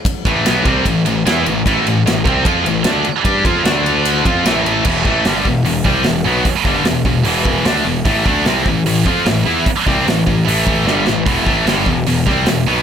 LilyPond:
<<
  \new Staff \with { instrumentName = "Distorted electric guitar" } { \clef bass \time 4/4 \key e \minor \tempo 4 = 150 r8 <a, e a>8 <b, fis b>8 <c g c'>8 <a, e>8 <a, e>8 <e b e'>8 <a, e>8 | <a, e a>8 <a, e>8 <a, e>8 <c g c'>8 <f c' f'>8 <a, e>8 <d a d'>8 r8 | <g d' g'>8 <f c' f'>8 <d a d'>4. <f c' f'>8 <a, e a>4 | <e, b, e>8 <a, e a>8 <g, d g>8 <e, b,>8 <e, b,>8 <c g c'>8 <e, b,>8 <b, fis b>8 |
r8 <g, d g>8 <e, b,>8 <e, b,>8 <e, b, e>4 <d a d'>8 <e, b,>8 | <a, e a>8 <d a d'>8 <c g c'>8 <a, e>8 <a, e>8 <f c' f'>8 <a, e>8 <e b e'>8 | r8 <c g c'>8 <a, e>8 <a, e>8 <a, e a>4 <g, d g>8 <a, e>8 | <e, b, e>8 <a, e a>8 <g, d g>8 <e, b,>8 <e, b,>8 <c g c'>8 <e, b,>8 <b, fis b>8 | }
  \new Staff \with { instrumentName = "Distorted electric guitar" } { \clef bass \time 4/4 \key e \minor r8 <a, e a>8 <b, fis b>8 <c g c'>8 <a, e>8 <a, e>8 <e b e'>8 <a, e>8 | <a, e a>8 <a, e>8 <a, e>8 <c g c'>8 <f c' f'>8 <a, e>8 <d a d'>8 r8 | <g d' g'>8 <f c' f'>8 <d a d'>4. <f c' f'>8 <a, e a>4 | <e, b, e>8 <a, e a>8 <g, d g>8 <e, b,>8 <e, b,>8 <c g c'>8 <e, b,>8 <b, fis b>8 |
r8 <g, d g>8 <e, b,>8 <e, b,>8 <e, b, e>4 <d a d'>8 <e, b,>8 | <a, e a>8 <d a d'>8 <c g c'>8 <a, e>8 <a, e>8 <f c' f'>8 <a, e>8 <e b e'>8 | r8 <c g c'>8 <a, e>8 <a, e>8 <a, e a>4 <g, d g>8 <a, e>8 | <e, b, e>8 <a, e a>8 <g, d g>8 <e, b,>8 <e, b,>8 <c g c'>8 <e, b,>8 <b, fis b>8 | }
  \new Staff \with { instrumentName = "Picked electric bass" } { \clef bass \time 4/4 \key e \minor r8 a,,8 b,,8 c,8 a,,8 a,,8 e,8 a,,8 | a,,8 a,,8 a,,8 c,8 f,8 a,,8 d,8 r8 | g,8 f,8 d,4. f,8 a,,4 | e,,8 a,,8 g,,8 e,,8 e,,8 c,8 e,,8 b,,8 |
r8 g,,8 e,,8 e,,8 e,,4 d,8 e,,8 | a,,8 d,8 c,8 a,,8 a,,8 f,8 a,,8 e,8 | r8 c,8 a,,8 a,,8 a,,4 g,,8 a,,8 | e,,8 a,,8 g,,8 e,,8 e,,8 c,8 e,,8 b,,8 | }
  \new DrumStaff \with { instrumentName = "Drums" } \drummode { \time 4/4 <bd cymr>8 <bd cymr>8 <cymr sn>8 <bd cymr>8 <bd cymr>8 cymr8 <cymr sn>8 cymr8 | <bd cymr>8 cymr8 <cymr sn>8 <bd cymr>8 <bd cymr>8 cymr8 <cymr sn>8 cymr8 | <bd cymr>8 <bd cymr>8 <cymr sn>8 cymr8 cymr8 <bd cymr>8 <cymr sn>8 cymr8 | <cymc bd>8 bd8 <hho sn>8 bd8 hho8 <bd sn>8 <hho sn>4 |
<hho bd>8 <bd sn>8 <hho sn>8 bd8 hho8 bd8 <hho sn>4 | <hho bd>8 bd8 <hho sn>8 bd8 hho8 <bd sn>8 <hho sn>4 | <hho bd>8 <bd sn>8 <hho sn>8 bd8 hho8 bd8 sn8 sn8 | <hho bd>8 bd8 <hho sn>8 bd8 hho8 <bd sn>8 <hho sn>4 | }
>>